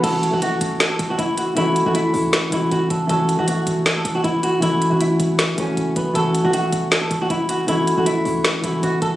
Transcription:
<<
  \new Staff \with { instrumentName = "Nylon-string guitar" } { \time 4/4 \key fis \minor \tempo 4 = 157 a'8. fis'16 fis'4~ fis'16 a'8 fis'16 e'8 fis'8 | e'8. fis'16 e'4. e'8 fis'8 a'8 | a'8. fis'16 fis'4~ fis'16 a'8 fis'16 e'8 fis'8 | e'8. fis'16 e'4. cis'4 b8 |
a'8. fis'16 fis'4~ fis'16 a'8 fis'16 e'8 fis'8 | e'8. fis'16 e'4. e'8 fis'8 a'8 | }
  \new Staff \with { instrumentName = "Felt piano" } { \time 4/4 \key fis \minor <e a cis' fis'>8. <e a cis' fis'>4.~ <e a cis' fis'>16 r4. | <e a cis' fis'>8. <e a cis' a'>4. r16 <e a cis' fis'>4. | <e a cis' fis'>8. <e a cis' fis'>4.~ <e a cis' fis'>16 r4. | <e a cis' fis'>8. <e a cis' fis'>4. r16 <e a cis' fis'>4. |
<e a cis' fis'>8. <e a cis' fis'>4.~ <e a cis' fis'>16 r4. | <e a cis' fis'>8. <e a cis' a'>4. r16 <e a cis' fis'>4. | }
  \new Staff \with { instrumentName = "808-style bass" } { \clef bass \time 4/4 \key fis \minor fis,,8. fis,,8. fis,,8 r8 fis,,8 fis,,4 | fis,,8. fis,,8. cis,8 r8 fis,,8 fis,,8 fis,,8 | fis,,8. fis,,8. fis,,8 r8 fis,,8 fis,,4 | fis,,8. fis,,8. fis,,8 r8 fis,,8 fis,,8 fis,,8 |
fis,,8. fis,,8. fis,,8 r8 fis,,8 fis,,4 | fis,,8. fis,,8. cis,8 r8 fis,,8 fis,,8 fis,,8 | }
  \new DrumStaff \with { instrumentName = "Drums" } \drummode { \time 4/4 <cymc hh>8 hh8 hh8 hh8 <hh sn>8 hh8 hh8 hh8 | hh8 hh8 hh8 hho8 <hh sn>8 hh8 hh8 hh8 | hh8 hh8 hh8 hh8 <hh sn>8 hh8 hh8 hh8 | hh8 hh8 hh8 hh8 <hh sn>8 hh8 hh8 hh8 |
hh8 hh8 hh8 hh8 <hh sn>8 hh8 hh8 hh8 | hh8 hh8 hh8 hho8 <hh sn>8 hh8 hh8 hh8 | }
>>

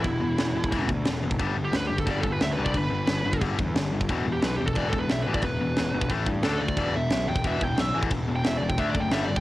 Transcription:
<<
  \new Staff \with { instrumentName = "Lead electric guitar" } { \time 4/4 \key e \minor \tempo 4 = 178 e'2~ e'8 r4. | \tuplet 3/2 { r4 g'8 b'8 g'8 a'8 d''8 a'8 b'8 e''8 b'8 d''8 } | b'2 r2 | \tuplet 3/2 { r4 g'8 b'8 g'8 a'8 d''8 a'8 b'8 e''8 b'8 d''8 } |
b'2 r4 a'8 d''8~ | d''8 e''4 g''8 e''8 g''8 e''8 r8 | \tuplet 3/2 { r4 g''8 e''8 d''8 g''8 e''8 d''8 g''8 e''8 d''8 g''8 } | }
  \new Staff \with { instrumentName = "Distorted electric guitar" } { \clef bass \time 4/4 \key e \minor <e, b,>8 <e, b,>8 <e, b,>8 <e, b,>8 <e, b, e>8 <e, b,>8 <e, b,>8 <e, b,>8 | <g, d g>8 <g, d>8 <g, d>8 <g, d>8 <g, d g>8 <g, d>8 <g, d>8 <g, d g>8 | <g, d>8 <g, d>8 <g, d>8 <g, d>8 <g, d g>8 <g, d>8 <g, d>8 <g, d>8 | <e, b, e>8 <e, b,>8 <e, b,>8 <e, b,>8 <e, b, e>8 <e, b,>8 <e, b,>8 <e, b, e>8 |
<e, b,>8 <e, b,>8 <e, b,>8 <e, b,>8 <a, e a>8 <a, e>8 <d a d'>8 <d a>8 | <e, b, e>8 <e, b,>8 <e, b,>8 <e, b,>8 <e, b, e>8 <e, b,>8 <e, b,>8 <e, b, e>8 | <e, b,>8 <e, b,>8 <e, b,>8 <e, b,>8 <d a d'>8 <d a>8 <g, d g>8 <g, d>8 | }
  \new Staff \with { instrumentName = "Picked electric bass" } { \clef bass \time 4/4 \key e \minor e,,8 e,,8 e,,8 e,,8 e,,8 d,8 e,,8 fis,,8 | g,,8 g,,8 d,8 g,,8 g,,8 g,,8 d,8 c,8 | g,,8 g,,8 g,,8 g,,8 g,,8 e,8 g,,8 g,,8 | e,,8 e,,8 b,,8 e,,8 e,,8 e,,8 b,,8 a,,8 |
e,,8 e,,8 e,,8 g,,8 a,,8 g,8 d,8 d,8 | e,,8 e,,8 b,,8 e,,8 e,,8 e,,8 b,,8 a,,8 | e,,8 e,,8 e,,8 e,,8 d,8 fis,,8 g,,8 g,,8 | }
  \new DrumStaff \with { instrumentName = "Drums" } \drummode { \time 4/4 <cymc bd>4 <cymc sn>8. bd16 <cymc bd>8 bd8 <cymc sn>8. bd16 | <cymc bd>4 <cymc sn>8. bd16 <cymc bd>8 bd8 <cymc sn>8. bd16 | <cymc bd>4 <cymc sn>8. bd16 <cymc bd>8 bd8 <cymc sn>8. bd16 | <cymc bd>4 <cymc sn>8. bd16 <cymc bd>8 bd8 <cymc sn>8. bd16 |
<cymc bd>4 <cymc sn>8. bd16 <cymc bd>8 bd8 <cymc sn>8. bd16 | <cymc bd>4 <cymc sn>8. bd16 <cymc bd>8 bd8 <cymc sn>8. bd16 | <cymc bd>4 <cymc sn>8. bd16 <cymc bd>8 bd8 <cymc sn>8. bd16 | }
>>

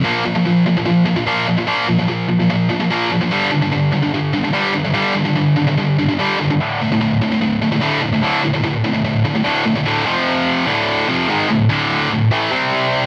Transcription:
\new Staff \with { instrumentName = "Distorted electric guitar" } { \clef bass \time 4/4 \key d \minor \tempo 4 = 147 <bes, f bes>8 <bes, f>16 <bes, f>16 <bes, f>8 <bes, f>16 <bes, f>16 <bes, f>8 <bes, f>16 <bes, f>16 <bes, f bes>8 <bes, f>16 <bes, f>16 | <bes, f bes>8 <bes, f>16 <bes, f>16 <bes, f>8 <bes, f>16 <bes, f>16 <bes, f>8 <bes, f>16 <bes, f>16 <bes, f bes>8 <bes, f>16 <bes, f>16 | <g, d g>8 <g, d>16 <g, d>16 <g, d>8 <g, d>16 <g, d>16 <g, d>8 <g, d>16 <g, d>16 <g, d g>8 <g, d>16 <g, d>16 | <g, d g>8 <g, d>16 <g, d>16 <g, d>8 <g, d>16 <g, d>16 <g, d>8 <g, d>16 <g, d>16 <g, d g>8 <g, d>16 <g, d>16 |
<d, a, d>8 <d, a,>16 <d, a,>16 <d, a,>8 <d, a,>16 <d, a,>16 <d, a,>8 <d, a,>16 <d, a,>16 <d, a, d>8 <d, a,>16 <d, a,>16 | <d, a, d>8 <d, a,>16 <d, a,>16 <d, a,>8 <d, a,>16 <d, a,>16 <d, a,>8 <d, a,>16 <d, a,>16 <d, a, d>8 <d, a,>16 <d, a,>16 | <d, a, d>8 <f, c f>4. <d, a, d>4 <f, c f>8 <gis, ees gis>8 | <d, a,>8 <d, a, d>4 <d, a,>8 <a, e a>8 <c g c'>4. | }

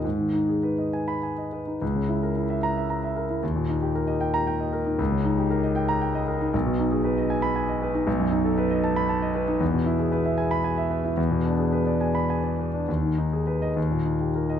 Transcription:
\new Staff \with { instrumentName = "Grand piano" } { \time 6/8 \key gis \minor \tempo 4. = 76 << { r4. r16 b''8 r8. | r4. ais''8 r4 | r4. r16 ais''8 r8. | r4. r16 ais''8 r8. |
r4. r16 b''8 r8. | r4. r16 b''8 r8. | r4. r16 b''8 r8. | r4. r16 b''8 r8. |
r4 r16 dis''16 r4 r16 dis''16 | } \\ { gis,16 dis16 dis'16 gis'16 b'16 dis''16 gis''8 gis''16 dis''16 b'16 dis'16 | cis,16 cis16 e'16 ais'16 e'16 e''8 e''16 ais''16 e''16 ais'16 e'16 | dis,16 ais,16 dis'16 g'16 ais'16 dis''16 g''8 g''16 dis''16 ais'16 dis'16 | cis,16 cis16 dis'16 g'16 ais'16 dis''16 g''8 g''16 dis''16 ais'16 dis'16 |
b,,16 b,16 dis'16 gis'16 b'16 dis''16 gis''8 gis''16 dis''16 b'16 dis'16 | b,,16 fis,16 dis'16 a'16 b'16 dis''16 a''8 a''16 dis''16 b'16 dis'16 | e,16 b,16 e'16 gis'16 b'16 e''16 gis''8 gis''16 e''16 b'16 e'16 | e,16 b,16 d'16 gis'16 b'16 d''16 gis''8 gis''16 d''16 b'16 d'16 |
dis,16 dis16 dis'16 gis'16 b'8 dis,16 ais,16 dis'16 g'16 ais'8 | } >> }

